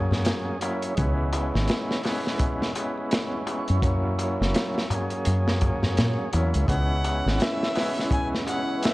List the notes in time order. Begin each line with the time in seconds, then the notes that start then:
Already playing: F#2 F#3 A#3 C#4 G#4 C#5
0.11 snare, darbuka tek, darbuka dum
0.25 snare, closed hi-hat, darbuka tek
0.48 darbuka tek
0.61 F#3 A#3 C#4 E4, closed hi-hat, darbuka tek
0.82 closed hi-hat, darbuka tek
0.95 C#2 G#3 B3, kick, closed hi-hat, darbuka tek
0.99 C#4 E4
1.19 darbuka tek
1.33 closed hi-hat, darbuka tek
1.54 G#1, snare, darbuka tek
1.68 snare, closed hi-hat, darbuka tek
1.89 snare, darbuka tek
2.03 G#3 B3 C#4 E4, snare, open hi-hat, darbuka tek
2.25 snare, darbuka tek
2.39 kick, closed hi-hat, darbuka tek
2.62 snare, darbuka tek
2.74 G#3 B3, closed hi-hat, darbuka tek
2.78 C#4 E4
2.98 darbuka tek
3.11 snare, closed hi-hat, darbuka tek
3.33 darbuka tek
3.47 closed hi-hat, darbuka tek
3.68 F#2, closed hi-hat, darbuka tek
3.80 F#3 A#3, kick, closed hi-hat, darbuka tek
3.84 C#4 E4
4.04 darbuka tek
4.19 closed hi-hat, darbuka tek
4.41 F#1, snare, darbuka tek
4.55 snare, closed hi-hat, darbuka tek
4.75 snare, darbuka tek
4.88 F#3 A#3, closed hi-hat, darbuka tek, darbuka dum
4.92 C#4 G#4
5.10 closed hi-hat, darbuka tek
5.25 F#2, closed hi-hat, darbuka tek
5.47 snare, darbuka tek
5.61 kick, closed hi-hat, darbuka tek, darbuka dum
5.83 snare, darbuka tek, darbuka dum
5.97 A#2, snare, closed hi-hat, darbuka tek
6.19 darbuka tek
6.32 E2 F#3 A#3 C#4 E4, closed hi-hat, darbuka tek
6.54 C#2, closed hi-hat, darbuka tek
6.67 C#2 G#3 B3 C#4 E4 B4 F#5, kick, closed hi-hat, darbuka tek
6.71 C#4 E4
6.90 darbuka tek
7.04 closed hi-hat, darbuka tek
7.25 G#1, snare, darbuka tek
7.40 E5, snare, closed hi-hat, darbuka tek
7.61 snare, darbuka tek
7.75 G#3 B3 C#4 E4, snare, open hi-hat, darbuka tek
7.96 snare, darbuka tek
8.11 G#5, kick, closed hi-hat, darbuka tek
8.35 snare
8.45 G#3 B3 F#5, closed hi-hat, darbuka tek
8.49 C#4 E4
8.69 darbuka tek
8.83 E5, snare, closed hi-hat, darbuka tek